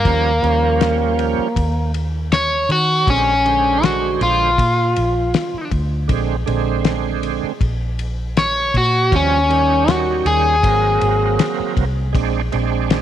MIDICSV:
0, 0, Header, 1, 6, 480
1, 0, Start_track
1, 0, Tempo, 756620
1, 35, Time_signature, 4, 2, 24, 8
1, 8258, End_track
2, 0, Start_track
2, 0, Title_t, "Overdriven electric guitar"
2, 0, Program_c, 0, 29
2, 0, Note_on_c, 0, 58, 93
2, 1211, Note_off_c, 0, 58, 0
2, 1481, Note_on_c, 0, 73, 79
2, 1710, Note_off_c, 0, 73, 0
2, 1726, Note_on_c, 0, 66, 83
2, 1952, Note_off_c, 0, 66, 0
2, 1966, Note_on_c, 0, 61, 90
2, 2436, Note_off_c, 0, 61, 0
2, 2436, Note_on_c, 0, 66, 94
2, 2667, Note_off_c, 0, 66, 0
2, 2682, Note_on_c, 0, 65, 76
2, 3611, Note_off_c, 0, 65, 0
2, 5321, Note_on_c, 0, 73, 90
2, 5548, Note_off_c, 0, 73, 0
2, 5567, Note_on_c, 0, 66, 85
2, 5792, Note_off_c, 0, 66, 0
2, 5809, Note_on_c, 0, 61, 85
2, 6280, Note_off_c, 0, 61, 0
2, 6280, Note_on_c, 0, 66, 94
2, 6508, Note_off_c, 0, 66, 0
2, 6515, Note_on_c, 0, 68, 97
2, 7447, Note_off_c, 0, 68, 0
2, 8258, End_track
3, 0, Start_track
3, 0, Title_t, "Tonewheel organ"
3, 0, Program_c, 1, 16
3, 32, Note_on_c, 1, 53, 70
3, 41, Note_on_c, 1, 55, 69
3, 46, Note_on_c, 1, 61, 77
3, 203, Note_off_c, 1, 53, 0
3, 207, Note_off_c, 1, 55, 0
3, 209, Note_off_c, 1, 61, 0
3, 266, Note_on_c, 1, 53, 73
3, 271, Note_on_c, 1, 55, 61
3, 275, Note_on_c, 1, 61, 82
3, 938, Note_off_c, 1, 53, 0
3, 940, Note_off_c, 1, 55, 0
3, 942, Note_off_c, 1, 61, 0
3, 1955, Note_on_c, 1, 50, 72
3, 1961, Note_on_c, 1, 56, 63
3, 1966, Note_on_c, 1, 60, 78
3, 2123, Note_off_c, 1, 50, 0
3, 2126, Note_off_c, 1, 56, 0
3, 2129, Note_off_c, 1, 60, 0
3, 2191, Note_on_c, 1, 50, 73
3, 2197, Note_on_c, 1, 56, 63
3, 2201, Note_on_c, 1, 72, 83
3, 2859, Note_off_c, 1, 50, 0
3, 2862, Note_off_c, 1, 56, 0
3, 2864, Note_off_c, 1, 72, 0
3, 3856, Note_on_c, 1, 50, 89
3, 3863, Note_on_c, 1, 56, 77
3, 3870, Note_on_c, 1, 60, 101
3, 4033, Note_off_c, 1, 50, 0
3, 4036, Note_off_c, 1, 56, 0
3, 4040, Note_off_c, 1, 60, 0
3, 4098, Note_on_c, 1, 50, 86
3, 4103, Note_on_c, 1, 56, 78
3, 4112, Note_on_c, 1, 60, 91
3, 4772, Note_off_c, 1, 50, 0
3, 4775, Note_off_c, 1, 56, 0
3, 4779, Note_off_c, 1, 60, 0
3, 5782, Note_on_c, 1, 53, 73
3, 5789, Note_on_c, 1, 55, 66
3, 5798, Note_on_c, 1, 61, 82
3, 5956, Note_off_c, 1, 53, 0
3, 5959, Note_off_c, 1, 55, 0
3, 5964, Note_off_c, 1, 61, 0
3, 6021, Note_on_c, 1, 51, 73
3, 6026, Note_on_c, 1, 55, 68
3, 6034, Note_on_c, 1, 61, 83
3, 6694, Note_off_c, 1, 51, 0
3, 6697, Note_off_c, 1, 55, 0
3, 6701, Note_off_c, 1, 61, 0
3, 6737, Note_on_c, 1, 54, 74
3, 6748, Note_on_c, 1, 58, 71
3, 6749, Note_on_c, 1, 60, 76
3, 7514, Note_off_c, 1, 54, 0
3, 7519, Note_off_c, 1, 58, 0
3, 7520, Note_off_c, 1, 60, 0
3, 7694, Note_on_c, 1, 56, 97
3, 7704, Note_on_c, 1, 60, 83
3, 7708, Note_on_c, 1, 62, 101
3, 7872, Note_off_c, 1, 56, 0
3, 7877, Note_off_c, 1, 60, 0
3, 7879, Note_off_c, 1, 62, 0
3, 7943, Note_on_c, 1, 56, 84
3, 7948, Note_on_c, 1, 60, 79
3, 7955, Note_on_c, 1, 62, 92
3, 8258, Note_off_c, 1, 56, 0
3, 8258, Note_off_c, 1, 60, 0
3, 8258, Note_off_c, 1, 62, 0
3, 8258, End_track
4, 0, Start_track
4, 0, Title_t, "Fingered electric bass"
4, 0, Program_c, 2, 33
4, 33, Note_on_c, 2, 39, 97
4, 257, Note_off_c, 2, 39, 0
4, 273, Note_on_c, 2, 39, 90
4, 853, Note_off_c, 2, 39, 0
4, 991, Note_on_c, 2, 39, 83
4, 1686, Note_off_c, 2, 39, 0
4, 1707, Note_on_c, 2, 51, 84
4, 1933, Note_off_c, 2, 51, 0
4, 1950, Note_on_c, 2, 34, 89
4, 2645, Note_off_c, 2, 34, 0
4, 2669, Note_on_c, 2, 34, 85
4, 2894, Note_off_c, 2, 34, 0
4, 2907, Note_on_c, 2, 46, 90
4, 3133, Note_off_c, 2, 46, 0
4, 3155, Note_on_c, 2, 34, 79
4, 3377, Note_off_c, 2, 34, 0
4, 3624, Note_on_c, 2, 38, 87
4, 3851, Note_off_c, 2, 38, 0
4, 3865, Note_on_c, 2, 34, 102
4, 4091, Note_off_c, 2, 34, 0
4, 4108, Note_on_c, 2, 34, 87
4, 4688, Note_off_c, 2, 34, 0
4, 4828, Note_on_c, 2, 34, 90
4, 5524, Note_off_c, 2, 34, 0
4, 5546, Note_on_c, 2, 46, 85
4, 5772, Note_off_c, 2, 46, 0
4, 5788, Note_on_c, 2, 39, 92
4, 6484, Note_off_c, 2, 39, 0
4, 6505, Note_on_c, 2, 39, 80
4, 6731, Note_off_c, 2, 39, 0
4, 6748, Note_on_c, 2, 32, 97
4, 6973, Note_off_c, 2, 32, 0
4, 6990, Note_on_c, 2, 32, 89
4, 7214, Note_off_c, 2, 32, 0
4, 7468, Note_on_c, 2, 36, 90
4, 7693, Note_off_c, 2, 36, 0
4, 7706, Note_on_c, 2, 34, 112
4, 7932, Note_off_c, 2, 34, 0
4, 7951, Note_on_c, 2, 34, 90
4, 8258, Note_off_c, 2, 34, 0
4, 8258, End_track
5, 0, Start_track
5, 0, Title_t, "Muted fingered electric bass strokes"
5, 879, Note_on_c, 9, 29, 35
5, 943, Note_off_c, 9, 29, 0
5, 3514, Note_on_c, 9, 29, 35
5, 3578, Note_off_c, 9, 29, 0
5, 4717, Note_on_c, 9, 29, 37
5, 4780, Note_off_c, 9, 29, 0
5, 7356, Note_on_c, 9, 29, 36
5, 7419, Note_off_c, 9, 29, 0
5, 8258, End_track
6, 0, Start_track
6, 0, Title_t, "Drums"
6, 33, Note_on_c, 9, 36, 108
6, 33, Note_on_c, 9, 51, 73
6, 96, Note_off_c, 9, 36, 0
6, 96, Note_off_c, 9, 51, 0
6, 276, Note_on_c, 9, 51, 52
6, 340, Note_off_c, 9, 51, 0
6, 512, Note_on_c, 9, 51, 76
6, 516, Note_on_c, 9, 38, 105
6, 576, Note_off_c, 9, 51, 0
6, 580, Note_off_c, 9, 38, 0
6, 754, Note_on_c, 9, 51, 57
6, 817, Note_off_c, 9, 51, 0
6, 992, Note_on_c, 9, 36, 87
6, 995, Note_on_c, 9, 51, 87
6, 1055, Note_off_c, 9, 36, 0
6, 1058, Note_off_c, 9, 51, 0
6, 1233, Note_on_c, 9, 51, 65
6, 1296, Note_off_c, 9, 51, 0
6, 1472, Note_on_c, 9, 51, 77
6, 1476, Note_on_c, 9, 38, 104
6, 1535, Note_off_c, 9, 51, 0
6, 1539, Note_off_c, 9, 38, 0
6, 1712, Note_on_c, 9, 51, 64
6, 1776, Note_off_c, 9, 51, 0
6, 1950, Note_on_c, 9, 36, 99
6, 1952, Note_on_c, 9, 51, 79
6, 2013, Note_off_c, 9, 36, 0
6, 2015, Note_off_c, 9, 51, 0
6, 2194, Note_on_c, 9, 51, 57
6, 2257, Note_off_c, 9, 51, 0
6, 2432, Note_on_c, 9, 51, 79
6, 2436, Note_on_c, 9, 38, 105
6, 2495, Note_off_c, 9, 51, 0
6, 2499, Note_off_c, 9, 38, 0
6, 2671, Note_on_c, 9, 51, 69
6, 2735, Note_off_c, 9, 51, 0
6, 2908, Note_on_c, 9, 36, 93
6, 2912, Note_on_c, 9, 51, 96
6, 2971, Note_off_c, 9, 36, 0
6, 2975, Note_off_c, 9, 51, 0
6, 3149, Note_on_c, 9, 51, 66
6, 3212, Note_off_c, 9, 51, 0
6, 3388, Note_on_c, 9, 51, 81
6, 3392, Note_on_c, 9, 38, 108
6, 3451, Note_off_c, 9, 51, 0
6, 3455, Note_off_c, 9, 38, 0
6, 3625, Note_on_c, 9, 36, 82
6, 3626, Note_on_c, 9, 51, 67
6, 3689, Note_off_c, 9, 36, 0
6, 3689, Note_off_c, 9, 51, 0
6, 3865, Note_on_c, 9, 36, 102
6, 3865, Note_on_c, 9, 51, 85
6, 3928, Note_off_c, 9, 51, 0
6, 3929, Note_off_c, 9, 36, 0
6, 4107, Note_on_c, 9, 51, 62
6, 4171, Note_off_c, 9, 51, 0
6, 4343, Note_on_c, 9, 51, 78
6, 4347, Note_on_c, 9, 38, 100
6, 4406, Note_off_c, 9, 51, 0
6, 4410, Note_off_c, 9, 38, 0
6, 4587, Note_on_c, 9, 51, 64
6, 4651, Note_off_c, 9, 51, 0
6, 4826, Note_on_c, 9, 36, 92
6, 4828, Note_on_c, 9, 51, 79
6, 4889, Note_off_c, 9, 36, 0
6, 4892, Note_off_c, 9, 51, 0
6, 5069, Note_on_c, 9, 51, 66
6, 5132, Note_off_c, 9, 51, 0
6, 5309, Note_on_c, 9, 51, 75
6, 5312, Note_on_c, 9, 38, 108
6, 5372, Note_off_c, 9, 51, 0
6, 5376, Note_off_c, 9, 38, 0
6, 5547, Note_on_c, 9, 36, 78
6, 5549, Note_on_c, 9, 51, 62
6, 5610, Note_off_c, 9, 36, 0
6, 5612, Note_off_c, 9, 51, 0
6, 5787, Note_on_c, 9, 36, 105
6, 5790, Note_on_c, 9, 51, 75
6, 5851, Note_off_c, 9, 36, 0
6, 5853, Note_off_c, 9, 51, 0
6, 6030, Note_on_c, 9, 51, 57
6, 6093, Note_off_c, 9, 51, 0
6, 6268, Note_on_c, 9, 51, 84
6, 6272, Note_on_c, 9, 38, 107
6, 6331, Note_off_c, 9, 51, 0
6, 6335, Note_off_c, 9, 38, 0
6, 6508, Note_on_c, 9, 51, 67
6, 6572, Note_off_c, 9, 51, 0
6, 6746, Note_on_c, 9, 36, 92
6, 6749, Note_on_c, 9, 51, 97
6, 6810, Note_off_c, 9, 36, 0
6, 6812, Note_off_c, 9, 51, 0
6, 6987, Note_on_c, 9, 51, 70
6, 7051, Note_off_c, 9, 51, 0
6, 7227, Note_on_c, 9, 51, 92
6, 7230, Note_on_c, 9, 38, 110
6, 7290, Note_off_c, 9, 51, 0
6, 7294, Note_off_c, 9, 38, 0
6, 7466, Note_on_c, 9, 36, 84
6, 7468, Note_on_c, 9, 51, 72
6, 7529, Note_off_c, 9, 36, 0
6, 7531, Note_off_c, 9, 51, 0
6, 7705, Note_on_c, 9, 36, 104
6, 7708, Note_on_c, 9, 51, 85
6, 7769, Note_off_c, 9, 36, 0
6, 7771, Note_off_c, 9, 51, 0
6, 7945, Note_on_c, 9, 51, 60
6, 8008, Note_off_c, 9, 51, 0
6, 8186, Note_on_c, 9, 51, 77
6, 8190, Note_on_c, 9, 38, 108
6, 8249, Note_off_c, 9, 51, 0
6, 8253, Note_off_c, 9, 38, 0
6, 8258, End_track
0, 0, End_of_file